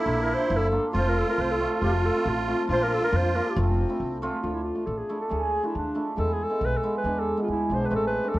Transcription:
Already playing: accordion E4
0.00 clarinet A4
0.05 upright bass A#1, hammered dulcimer A#3 D4 F4
0.22 clarinet A#4
0.34 hammered dulcimer A#3 D4, clarinet C5
0.38 hammered dulcimer F4
0.50 upright bass F#1
0.57 clarinet A4
0.72 hammered dulcimer A#3 D4 F4
0.93 upright bass F1, hammered dulcimer A3 C4 F4, accordion F4
0.98 clarinet C5
1.09 clarinet A#4
1.19 clarinet A4
1.27 hammered dulcimer A3 C4 F4, clarinet A#4
1.38 upright bass C2, clarinet C5
1.51 clarinet A4
1.60 hammered dulcimer A3 C4 F4
1.81 upright bass F1, hammered dulcimer A3 C4 F4, clarinet G4
1.93 clarinet F4
2.05 clarinet A4
2.15 hammered dulcimer A3 C4 E4
2.25 upright bass A1, clarinet F4
2.48 hammered dulcimer A3 C4 F4
2.67 upright bass A#1, hammered dulcimer A#3 D4 F4, accordion F4
2.72 clarinet C5
2.83 clarinet A#4
2.88 clarinet A#4
2.93 clarinet A4
3.02 hammered dulcimer A#3 D4 F4, clarinet A#4
3.12 upright bass F2
3.16 clarinet C5
3.35 hammered dulcimer A#3 D4 F4, clarinet A#4
3.47 clarinet G4
3.56 upright bass F1, hammered dulcimer A3 C4 F4, accordion C4, clarinet F4
3.88 hammered dulcimer A3 C4 E4
4.00 upright bass C2
4.22 hammered dulcimer A3 C4 F4
4.42 upright bass D2, hammered dulcimer A3 D4 F4, clarinet F4
4.54 clarinet E4
4.64 clarinet F4
4.75 hammered dulcimer A3 D4 F4
4.86 upright bass A1, clarinet A4
4.98 clarinet G#4
5.09 hammered dulcimer A3 D4 E4
5.21 clarinet A4
5.29 upright bass D2, hammered dulcimer A3 D4 G#4
5.43 clarinet G#4
5.63 hammered dulcimer A3 D4 F4, clarinet E4
5.75 upright bass D#2, clarinet D4
5.95 hammered dulcimer A3 D4 E4
6.16 upright bass E2, hammered dulcimer G#3 B3 E4, clarinet A4
6.33 clarinet G#4
6.43 clarinet A4
6.50 hammered dulcimer G#3 B3 E4
6.61 upright bass B1
6.66 clarinet B4
6.77 clarinet A4
6.83 hammered dulcimer G#3 B3 E4
6.98 clarinet B4
7.04 upright bass E2, hammered dulcimer G#3 B3 D4
7.19 clarinet A4
7.37 hammered dulcimer G#3 B3 E4
7.42 clarinet F4
7.48 upright bass D2, clarinet E4
7.70 upright bass B1, hammered dulcimer G#3 B3 D4
7.74 clarinet C5
7.85 clarinet B4
7.90 upright bass A1, hammered dulcimer A3 C4 E4
7.95 clarinet A4
8.07 clarinet B4
8.24 hammered dulcimer A3 C4 D4
8.29 clarinet A4
8.34 upright bass E2

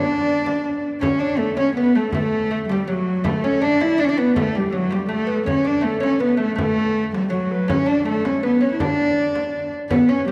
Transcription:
Already playing: lute D4, cello D4
0.06 recorder D5
0.46 frame drum
0.66 frame drum
1.00 cello C#4, lute C#4, recorder C#5, frame drum
1.19 cello D4, lute D4
1.37 lute A3, cello A3, recorder A4
1.57 lute C#4, cello C#4, recorder C#5, frame drum
1.76 cello B3, lute B3, recorder B4
1.95 lute A3, cello A3, recorder A4
2.13 lute A3, cello A3, recorder A4, frame drum
2.51 lute A3
2.69 cello G3, lute G3, recorder G4, frame drum
2.88 lute F#3, cello F#3, recorder G4
2.93 recorder F#4
3.24 lute A3, cello A3, recorder A4, frame drum
3.44 lute C#4, cello C#4
3.61 lute D4, cello D4, recorder D5
3.81 cello E4, lute E4, frame drum
3.98 lute D4, cello D4, recorder D5
4.04 cello C#4
4.08 cello D4, lute D4, recorder D5
4.18 lute B3, cello B3, recorder B4
4.36 lute A3, cello A3, recorder A4, frame drum
4.55 lute G3, cello G3, recorder G4, frame drum
4.72 lute F#3, cello F#3
4.77 recorder F#4
4.91 lute G3, cello G3, frame drum
4.95 recorder G4
5.09 lute A3, cello A3
5.14 recorder A4
5.27 lute B3, frame drum
5.46 lute C#4, cello C#4, recorder C#5, frame drum
5.65 lute D4, cello D4, recorder D5
5.81 lute A3, cello A3, recorder A4
6.00 lute C#4, cello C#4, frame drum
6.20 lute B3, cello B3, recorder B4
6.37 lute A3, recorder A4
6.41 cello A3
6.56 lute A3, cello A3, recorder A4, frame drum
7.14 cello G3, frame drum
7.30 lute F#3, cello F#3, recorder F#4
7.52 recorder B4
7.68 lute C#4, cello C#4, recorder C#5, frame drum
7.86 lute D4, cello D4, recorder D5
8.05 lute A3, cello A3, recorder A4
8.25 cello C#4, recorder C#5, frame drum
8.43 lute B3, cello B3, recorder B4
8.61 lute C#4, cello C#4, recorder C#5
8.72 cello E4
8.80 cello D4, lute D4, recorder D5, frame drum
8.85 recorder C#5
8.91 recorder D5
9.35 frame drum
9.74 frame drum
9.90 cello B3, lute B3, recorder C#5, frame drum
9.95 recorder B4
10.09 lute C#4, cello C#4, recorder C#5
10.25 lute G3, cello G3, recorder G4

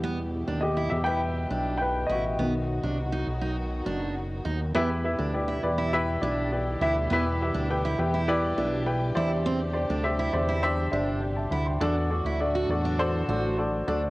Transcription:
Already playing: analog synth bass E2, string section B2 G3 E4 G4, grand piano E3 G3 B3
0.03 steel-string acoustic guitar B3
0.48 analog synth bass D#2, steel-string acoustic guitar D4
0.61 grand piano G4 D#5
0.77 steel-string acoustic guitar E4
0.90 analog synth bass E2, grand piano G4 E5
1.04 steel-string acoustic guitar E4, grand piano B4 G5
1.50 analog synth bass B1, steel-string acoustic guitar D4
1.78 grand piano G5
1.82 grand piano B4
2.07 analog synth bass A1, steel-string acoustic guitar E4, grand piano D#5
2.11 grand piano F#4
2.39 analog synth bass B1, grand piano D#3 F#3 B3, string section D#3 F#3 D#4 F#4, steel-string acoustic guitar B3
2.83 analog synth bass C2, steel-string acoustic guitar D4
3.12 steel-string acoustic guitar D#4
3.27 analog synth bass B1
3.41 steel-string acoustic guitar D#4
3.86 analog synth bass F#1, steel-string acoustic guitar D4
4.45 analog synth bass D#2, steel-string acoustic guitar D#4
4.75 analog synth bass E2, string section B2 E3 G3 E4 G4, grand piano E3 E4 G4 B4 E5, steel-string acoustic guitar B3
5.04 grand piano E4 G4 B4 E5
5.19 analog synth bass D2, steel-string acoustic guitar D4
5.34 grand piano E4 G4 B4 D5
5.48 steel-string acoustic guitar E4
5.63 analog synth bass E2, grand piano E4 G4 B4 D5
5.78 steel-string acoustic guitar E4
5.93 grand piano E4 G4 B4 E5
6.21 analog synth bass B1, steel-string acoustic guitar D4, grand piano E4 G4 B4 D5
6.52 grand piano E4 G4 B4 D5
6.81 analog synth bass D2, steel-string acoustic guitar E4, grand piano E4 G4 B4 E5
7.10 analog synth bass E2, grand piano E3 E4 G4 B4 E5, steel-string acoustic guitar B3
7.42 grand piano E4 G4 B4 E5
7.54 analog synth bass D2, steel-string acoustic guitar D4
7.70 grand piano E4 G4 B4 G5
7.85 steel-string acoustic guitar E4
7.98 analog synth bass E2, grand piano E4 G4 B4 G5
8.14 steel-string acoustic guitar E4
8.28 grand piano E4 G4 B4 D5
8.57 analog synth bass B1, steel-string acoustic guitar D4, grand piano E4 G4 B4 D5
8.86 grand piano E4 G4 B4 G5
9.15 analog synth bass E2, string section C3 D3 D4, grand piano E3 D4 G4 C5 D5, steel-string acoustic guitar E4
9.46 steel-string acoustic guitar C4
9.73 grand piano D4 G4 C5 D5
9.90 analog synth bass D2, steel-string acoustic guitar D4
10.04 grand piano D4 G4 C5 E5
10.19 steel-string acoustic guitar E4
10.33 analog synth bass E2, grand piano D4 G4 C5 D5
10.49 steel-string acoustic guitar E4
10.63 grand piano D4 G4 C5 E5
10.92 analog synth bass G1, grand piano D4 G4 C5 E5, steel-string acoustic guitar D4
11.21 grand piano D5 G5
11.36 grand piano E5 A5
11.51 analog synth bass D2, steel-string acoustic guitar E4, grand piano F#5 B5
11.66 grand piano G5 C6
11.80 analog synth bass E2, string section A2 D3 F#3 F#4, grand piano E3 D4 F#4 A4 D5, steel-string acoustic guitar D4
12.10 grand piano D4 F#4 A4 D5
12.25 analog synth bass D2, steel-string acoustic guitar E4
12.40 grand piano D4 F#4 A4 D5
12.55 steel-string acoustic guitar F#4
12.69 analog synth bass E2, grand piano D4 F#4 A4 D5
12.85 steel-string acoustic guitar D4
12.99 grand piano D4 F#4 A4 C5
13.28 analog synth bass A1, grand piano D4 F#4 A4 D5, steel-string acoustic guitar F#4
13.58 grand piano D4 F#4 A4 D5 A5
13.87 analog synth bass D2, grand piano D4 F#4 A4 D5, steel-string acoustic guitar D4

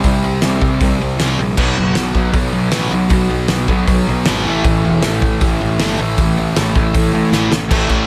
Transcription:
Already playing: distorted electric guitar C3 G3 C4
0.03 picked electric bass C2, overdriven electric guitar C3 G3, kick, open hi-hat
0.24 overdriven electric guitar C3 G3
0.42 picked electric bass C2, overdriven electric guitar C3 G3, distorted electric guitar C4, snare, open hi-hat
0.61 picked electric bass C2, overdriven electric guitar C3 G3, kick
0.80 picked electric bass C2, overdriven electric guitar C3 G3, kick, open hi-hat
1.00 picked electric bass C2, overdriven electric guitar C3 G3
1.18 picked electric bass C2, overdriven electric guitar C3 G3 C4, snare, open hi-hat
1.38 picked electric bass A#1, overdriven electric guitar C3 G3
1.57 picked electric bass B1, overdriven electric guitar B2 F#3 B3, kick, crash
1.78 picked electric bass F#1, overdriven electric guitar B2 F#3
1.95 picked electric bass B1, overdriven electric guitar B2 F#3, snare, open hi-hat
2.15 overdriven electric guitar B2 F#3, distorted electric guitar B3, kick
2.33 picked electric bass B1, overdriven electric guitar B2 F#3, kick, open hi-hat
2.53 picked electric bass B1, overdriven electric guitar B2 F#3
2.72 picked electric bass A1, overdriven electric guitar B2 F#3 B3, snare, open hi-hat
2.92 picked electric bass B1, overdriven electric guitar B2 F#3
3.09 picked electric bass B1, overdriven electric guitar B2 F#3, distorted electric guitar B3, kick, open hi-hat
3.30 overdriven electric guitar B2 F#3
3.48 picked electric bass B1, overdriven electric guitar B2 F#3, snare, open hi-hat
3.68 picked electric bass B1, overdriven electric guitar B2 F#3, distorted electric guitar B3, kick
3.87 picked electric bass B1, overdriven electric guitar B2 F#3, kick, open hi-hat
4.07 picked electric bass B1, overdriven electric guitar B2 F#3
4.26 picked electric bass G#1, overdriven electric guitar B2 F#3 B3, snare, open hi-hat
4.46 picked electric bass A1, overdriven electric guitar A2 E3 A3
4.64 picked electric bass A1, overdriven electric guitar A2 E3, kick, open hi-hat
4.84 picked electric bass E1, overdriven electric guitar A2 E3
5.03 picked electric bass A1, overdriven electric guitar A2 E3, distorted electric guitar A3, snare, open hi-hat
5.21 overdriven electric guitar A2 E3, kick
5.41 picked electric bass A1, overdriven electric guitar A2 E3, kick, open hi-hat
5.61 picked electric bass A1, overdriven electric guitar A2 E3
5.79 picked electric bass G1, overdriven electric guitar A2 E3 A3, snare, open hi-hat
5.99 picked electric bass A1, overdriven electric guitar A2 E3, distorted electric guitar A3
6.17 picked electric bass A1, overdriven electric guitar A2 E3, kick, open hi-hat
6.38 overdriven electric guitar A2 E3
6.56 picked electric bass A1, overdriven electric guitar A2 E3, distorted electric guitar A3, snare, open hi-hat
6.75 picked electric bass A1, overdriven electric guitar A2 E3, kick
6.94 picked electric bass A2, overdriven electric guitar A2 E3, kick, open hi-hat
7.14 picked electric bass A2, overdriven electric guitar A2 E3
7.30 picked electric bass A1, overdriven electric guitar A2 E3, snare
7.35 overdriven electric guitar A3
7.51 picked electric bass A1, overdriven electric guitar A2 E3, snare
7.70 picked electric bass A1, overdriven electric guitar A2 E3 A3, kick, crash
7.89 picked electric bass A1, overdriven electric guitar A2 E3 A3, kick, crash

